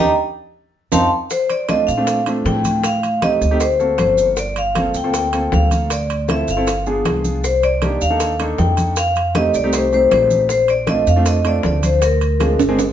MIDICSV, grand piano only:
0, 0, Header, 1, 2, 480
1, 0, Start_track
1, 0, Key_signature, -2, "major"
1, 0, Tempo, 383142
1, 1634, Time_signature, 4, 2, 24, 8
1, 16195, End_track
2, 0, Start_track
2, 0, Title_t, "Grand piano"
2, 0, Program_c, 0, 0
2, 1153, Note_on_c, 0, 63, 92
2, 1154, Note_on_c, 0, 60, 97
2, 1156, Note_on_c, 0, 65, 91
2, 1307, Note_off_c, 0, 60, 0
2, 1307, Note_off_c, 0, 63, 0
2, 1309, Note_off_c, 0, 65, 0
2, 2112, Note_on_c, 0, 57, 60
2, 2116, Note_on_c, 0, 62, 63
2, 2116, Note_on_c, 0, 65, 69
2, 2117, Note_on_c, 0, 60, 56
2, 2365, Note_off_c, 0, 57, 0
2, 2367, Note_off_c, 0, 62, 0
2, 2367, Note_off_c, 0, 65, 0
2, 2368, Note_off_c, 0, 60, 0
2, 2472, Note_on_c, 0, 60, 75
2, 2475, Note_on_c, 0, 57, 79
2, 2475, Note_on_c, 0, 62, 74
2, 2476, Note_on_c, 0, 65, 83
2, 2725, Note_off_c, 0, 60, 0
2, 2727, Note_off_c, 0, 57, 0
2, 2727, Note_off_c, 0, 62, 0
2, 2727, Note_off_c, 0, 65, 0
2, 2843, Note_on_c, 0, 57, 74
2, 2845, Note_on_c, 0, 60, 67
2, 2845, Note_on_c, 0, 62, 62
2, 2848, Note_on_c, 0, 65, 77
2, 3512, Note_off_c, 0, 57, 0
2, 3512, Note_off_c, 0, 60, 0
2, 3513, Note_off_c, 0, 62, 0
2, 3514, Note_off_c, 0, 65, 0
2, 4028, Note_on_c, 0, 63, 58
2, 4029, Note_on_c, 0, 60, 62
2, 4030, Note_on_c, 0, 67, 73
2, 4033, Note_on_c, 0, 57, 60
2, 4284, Note_off_c, 0, 63, 0
2, 4285, Note_off_c, 0, 60, 0
2, 4285, Note_off_c, 0, 67, 0
2, 4286, Note_off_c, 0, 57, 0
2, 4395, Note_on_c, 0, 63, 74
2, 4397, Note_on_c, 0, 60, 65
2, 4401, Note_on_c, 0, 57, 84
2, 4401, Note_on_c, 0, 67, 96
2, 4515, Note_off_c, 0, 63, 0
2, 4517, Note_off_c, 0, 60, 0
2, 4518, Note_off_c, 0, 57, 0
2, 4519, Note_off_c, 0, 67, 0
2, 4754, Note_on_c, 0, 58, 67
2, 4756, Note_on_c, 0, 69, 84
2, 4758, Note_on_c, 0, 60, 60
2, 4760, Note_on_c, 0, 66, 58
2, 5428, Note_off_c, 0, 58, 0
2, 5429, Note_off_c, 0, 69, 0
2, 5430, Note_off_c, 0, 60, 0
2, 5430, Note_off_c, 0, 66, 0
2, 5959, Note_on_c, 0, 58, 64
2, 5961, Note_on_c, 0, 65, 61
2, 5963, Note_on_c, 0, 60, 65
2, 5966, Note_on_c, 0, 69, 71
2, 6210, Note_off_c, 0, 58, 0
2, 6211, Note_off_c, 0, 65, 0
2, 6212, Note_off_c, 0, 60, 0
2, 6213, Note_off_c, 0, 69, 0
2, 6313, Note_on_c, 0, 60, 71
2, 6313, Note_on_c, 0, 65, 76
2, 6313, Note_on_c, 0, 69, 80
2, 6316, Note_on_c, 0, 58, 79
2, 6567, Note_off_c, 0, 60, 0
2, 6567, Note_off_c, 0, 65, 0
2, 6567, Note_off_c, 0, 69, 0
2, 6568, Note_off_c, 0, 58, 0
2, 6669, Note_on_c, 0, 60, 69
2, 6670, Note_on_c, 0, 58, 68
2, 6672, Note_on_c, 0, 65, 67
2, 6672, Note_on_c, 0, 69, 77
2, 7345, Note_off_c, 0, 58, 0
2, 7345, Note_off_c, 0, 60, 0
2, 7347, Note_off_c, 0, 65, 0
2, 7347, Note_off_c, 0, 69, 0
2, 7869, Note_on_c, 0, 60, 66
2, 7870, Note_on_c, 0, 65, 58
2, 7871, Note_on_c, 0, 64, 62
2, 7874, Note_on_c, 0, 69, 74
2, 8125, Note_off_c, 0, 60, 0
2, 8126, Note_off_c, 0, 64, 0
2, 8126, Note_off_c, 0, 65, 0
2, 8127, Note_off_c, 0, 69, 0
2, 8228, Note_on_c, 0, 60, 78
2, 8229, Note_on_c, 0, 65, 71
2, 8231, Note_on_c, 0, 69, 94
2, 8232, Note_on_c, 0, 64, 65
2, 8352, Note_off_c, 0, 60, 0
2, 8353, Note_off_c, 0, 65, 0
2, 8354, Note_off_c, 0, 64, 0
2, 8354, Note_off_c, 0, 69, 0
2, 8601, Note_on_c, 0, 59, 70
2, 8601, Note_on_c, 0, 65, 68
2, 8604, Note_on_c, 0, 68, 80
2, 8605, Note_on_c, 0, 62, 64
2, 9270, Note_off_c, 0, 59, 0
2, 9271, Note_off_c, 0, 65, 0
2, 9272, Note_off_c, 0, 62, 0
2, 9272, Note_off_c, 0, 68, 0
2, 9793, Note_on_c, 0, 63, 60
2, 9794, Note_on_c, 0, 58, 66
2, 9795, Note_on_c, 0, 62, 61
2, 9799, Note_on_c, 0, 67, 77
2, 10046, Note_off_c, 0, 63, 0
2, 10047, Note_off_c, 0, 58, 0
2, 10047, Note_off_c, 0, 62, 0
2, 10049, Note_off_c, 0, 67, 0
2, 10152, Note_on_c, 0, 58, 77
2, 10152, Note_on_c, 0, 62, 68
2, 10153, Note_on_c, 0, 63, 70
2, 10153, Note_on_c, 0, 69, 90
2, 10405, Note_off_c, 0, 58, 0
2, 10406, Note_off_c, 0, 62, 0
2, 10406, Note_off_c, 0, 63, 0
2, 10406, Note_off_c, 0, 69, 0
2, 10516, Note_on_c, 0, 63, 67
2, 10518, Note_on_c, 0, 58, 68
2, 10518, Note_on_c, 0, 62, 69
2, 10518, Note_on_c, 0, 69, 83
2, 11187, Note_off_c, 0, 63, 0
2, 11188, Note_off_c, 0, 58, 0
2, 11188, Note_off_c, 0, 62, 0
2, 11188, Note_off_c, 0, 69, 0
2, 11715, Note_on_c, 0, 60, 66
2, 11716, Note_on_c, 0, 57, 64
2, 11717, Note_on_c, 0, 63, 68
2, 11717, Note_on_c, 0, 67, 74
2, 11966, Note_off_c, 0, 60, 0
2, 11967, Note_off_c, 0, 57, 0
2, 11967, Note_off_c, 0, 63, 0
2, 11967, Note_off_c, 0, 67, 0
2, 12072, Note_on_c, 0, 57, 80
2, 12075, Note_on_c, 0, 60, 78
2, 12075, Note_on_c, 0, 63, 77
2, 12077, Note_on_c, 0, 67, 91
2, 12325, Note_off_c, 0, 57, 0
2, 12326, Note_off_c, 0, 60, 0
2, 12326, Note_off_c, 0, 63, 0
2, 12327, Note_off_c, 0, 67, 0
2, 12433, Note_on_c, 0, 57, 72
2, 12434, Note_on_c, 0, 60, 69
2, 12436, Note_on_c, 0, 67, 77
2, 12437, Note_on_c, 0, 63, 58
2, 13105, Note_off_c, 0, 57, 0
2, 13105, Note_off_c, 0, 60, 0
2, 13106, Note_off_c, 0, 67, 0
2, 13107, Note_off_c, 0, 63, 0
2, 13630, Note_on_c, 0, 62, 68
2, 13632, Note_on_c, 0, 60, 64
2, 13632, Note_on_c, 0, 65, 80
2, 13633, Note_on_c, 0, 57, 65
2, 13883, Note_off_c, 0, 62, 0
2, 13884, Note_off_c, 0, 57, 0
2, 13884, Note_off_c, 0, 60, 0
2, 13884, Note_off_c, 0, 65, 0
2, 13984, Note_on_c, 0, 62, 72
2, 13985, Note_on_c, 0, 60, 74
2, 13987, Note_on_c, 0, 57, 81
2, 13987, Note_on_c, 0, 65, 92
2, 14240, Note_off_c, 0, 60, 0
2, 14240, Note_off_c, 0, 62, 0
2, 14241, Note_off_c, 0, 57, 0
2, 14241, Note_off_c, 0, 65, 0
2, 14341, Note_on_c, 0, 57, 68
2, 14341, Note_on_c, 0, 62, 66
2, 14345, Note_on_c, 0, 60, 60
2, 14346, Note_on_c, 0, 65, 73
2, 15018, Note_off_c, 0, 57, 0
2, 15018, Note_off_c, 0, 62, 0
2, 15020, Note_off_c, 0, 60, 0
2, 15020, Note_off_c, 0, 65, 0
2, 15538, Note_on_c, 0, 60, 56
2, 15540, Note_on_c, 0, 62, 59
2, 15541, Note_on_c, 0, 56, 68
2, 15542, Note_on_c, 0, 65, 73
2, 15796, Note_off_c, 0, 60, 0
2, 15797, Note_off_c, 0, 62, 0
2, 15798, Note_off_c, 0, 56, 0
2, 15798, Note_off_c, 0, 65, 0
2, 15893, Note_on_c, 0, 60, 95
2, 15893, Note_on_c, 0, 68, 98
2, 15895, Note_on_c, 0, 56, 91
2, 15897, Note_on_c, 0, 62, 80
2, 16021, Note_off_c, 0, 60, 0
2, 16021, Note_off_c, 0, 68, 0
2, 16022, Note_off_c, 0, 56, 0
2, 16023, Note_off_c, 0, 62, 0
2, 16195, End_track
0, 0, End_of_file